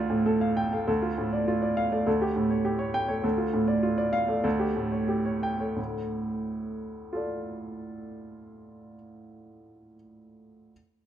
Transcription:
grand piano
Already playing: D2 F4 A4 D5
0.10 A2
0.26 A4
0.41 F5
0.57 G5
0.73 A3 F5
0.87 D2 A4
1.02 F4
1.18 A2
1.33 D5
1.48 F4
1.62 D5
1.77 F5
1.92 A3 D5
2.06 D2 A4
2.22 G4
2.36 A2
2.50 C#5
2.65 G4
2.79 C#5
2.94 G5
3.08 A3 C#5
3.24 D2 A4
3.38 F4
3.53 A2
3.68 D5
3.83 F4
3.98 D5
4.13 F5
4.28 A3 D5
4.44 D2 A4
4.60 G4
4.76 A2
4.92 C#5
5.08 G4
5.26 C#5
5.43 G5
5.60 A3 C#5
5.76 D2 A2
7.13 F4 A4 D5

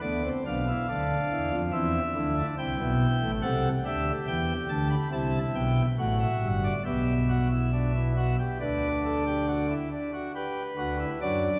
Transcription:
pipe organ
0.02 D2 D3 B3 D5
0.24 C4
0.46 B1 B2 D4 F5
0.68 E4
0.89 D2 D3 D4
1.31 E2 E3
1.52 F2 F3
1.72 E2 E3 C4 E5
2.15 D2 D3 E4
2.37 D4
2.58 C2 C3 E4 G5
2.80 B1 B2
3.22 A1 A2
3.42 C2 C3 A4 F#5
3.85 D2 D3 G4 E5
4.27 E2 E3 G5
4.69 D2 D3 A5
4.90 B5
5.12 C2 C3 E4 A5
5.54 B1 B2 G5
5.99 A1 A2 F#4 F#5
6.20 E5
6.41 G1 G2
6.64 D5
6.85 B1 B2 G4 E5
7.29 F#4
7.51 E4
7.73 D4
7.95 E4
8.17 F#4
8.39 G4
8.60 D2 D3 B4 D5
9.05 A4
9.27 G4
9.48 F#4
9.70 E4
9.92 D4
10.13 F#4
10.35 G4 B4
10.77 D2 D3 F#4
10.99 E4
11.21 F#2 F#3 D4 D5

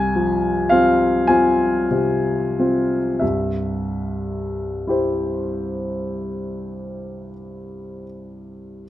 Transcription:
grand piano
Already playing: C2 G#5
0.16 F3
0.69 C4 F4 F5
1.27 C4 F4 G#5
1.91 C3
2.59 C4 F4
3.19 C2 G2 E5
4.87 E4 G4 C5

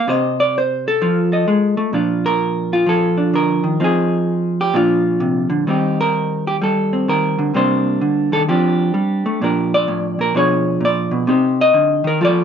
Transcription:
hollow-body jazz guitar
Already playing: F5
0.07 C3 C4 G4 C5 D#5
0.40 D5
0.58 C5
0.88 A4
1.02 F3 F4
1.32 A4 D#5
1.48 G#3
1.77 A3
1.93 A#2 F3 D4 F4
2.26 A#4
2.73 F4
2.86 F3 A4
3.18 D4
3.34 D3 A#4
3.64 D#3
3.80 F3 C4 D#4
3.84 G#4
4.61 G4
4.74 A#2 F3 D4 F4
5.20 C3
5.50 D3
5.67 D#3 G3 C4 D#4 G4
6.01 A#4
6.47 G4
6.62 G3 A4
6.93 C4
7.08 D#3 A#4
7.39 D3
7.54 C3 G3 A#3 D4 C5
8.01 D3
8.32 D#3 A4
8.48 F3 C4 D4 G4
8.94 G3
9.26 A3
9.41 A#2 F3 D4 G4 A#4
9.74 D5
9.88 A2
10.19 A#2 A#4
10.34 B2 F3 D4 G#4 C#5
10.81 A#2
10.85 D5
11.11 B2
11.27 C3 C4 D#4 G4 C5
11.61 D#5
11.74 D3
12.04 D#3 A#4
12.21 F3 F4 A4 D5

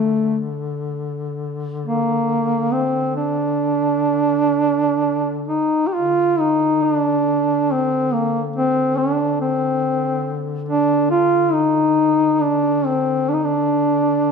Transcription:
duduk
Already playing: D3 A3
1.87 A#3
2.72 C4
3.16 D4
5.48 D#4
5.87 G4
5.94 D3 F4
6.39 D#4
6.83 D4
7.72 C4
8.13 A#3
8.56 C4
8.98 D4
9.41 C4
10.69 D4
11.11 F4
11.53 D#4
12.41 D4
12.86 C4
13.29 D4
13.33 D#4
13.44 D4

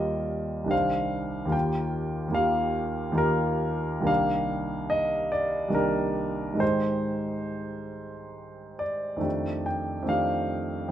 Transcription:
grand piano
Already playing: D#2 G3 F4 G4 A#4 D5 D#5
0.64 C2 D#3 D4
0.69 G4 C5 F5
1.45 D#2 D#3
1.49 A#3 F4 G4 G5
2.28 D#2 D#3
2.32 A#3 F4 G4 F5
3.12 D#2 D#3 A#3
3.16 F4 G4 A#4
4.00 C2 D#3 A#3
4.05 D4 G4 F5
4.90 D#5
5.32 D5
5.68 C2 D#3 A#3
5.73 D4 G4 A#4
6.53 G#2 D#3 G#3
6.58 D#4 G4 C5
8.79 D5
9.16 F2 D#3 A3
9.21 D4 G4
9.66 G5
10.03 F2 D#3 A3
10.07 D4 G4 F5
10.88 F2

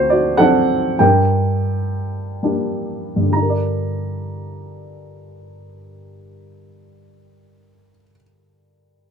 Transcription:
upright piano
Already playing: D2 C4 F#4 A4 C5
0.10 F#4 D5
0.37 F#3 C4 D4 A4 F#5
0.99 G2 A#4 G5
2.43 G3 A#3 D4
3.16 G2
3.23 D3
3.29 G3 A#5
3.36 D4
3.42 A#4
3.50 D5

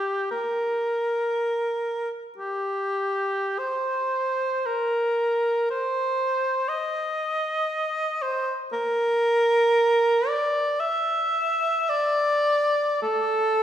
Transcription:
cor anglais
Already playing: G4
0.31 A#4
2.38 G4
3.59 C5
4.66 A#4
5.70 C5
6.69 D#5
8.22 C5
8.73 A#4
10.28 D5
10.80 E5
11.89 D5
13.02 A4

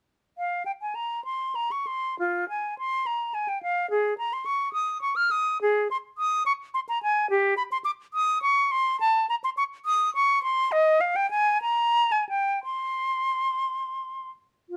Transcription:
flute
0.38 F5
0.66 G5
0.82 G#5
0.95 A#5
1.25 C6
1.55 A#5
1.71 C#6
1.87 C6
2.19 F4
2.49 G#5
2.78 C6
3.06 A#5
3.34 G#5
3.48 G5
3.63 F5
3.90 G#4
4.18 A#5
4.33 C6
4.46 C#6
4.73 D#6
5.01 C#6
5.16 F6
5.31 D#6
5.62 G#4
5.91 C6
6.18 D#6
6.46 C#6
6.74 C6
6.89 A#5
7.03 G#5
7.30 G4
7.57 B5
7.72 C6
7.85 D6
8.14 D#6
8.42 C#6
8.71 C6
9.00 A5
9.30 A#5
9.44 C6
9.57 C#6
9.85 D#6
10.15 C#6
10.43 C6
10.72 D#5
11.01 F5
11.16 G5
11.31 G#5
11.62 A#5
12.12 G#5
12.29 G5
12.64 C6
14.69 F4

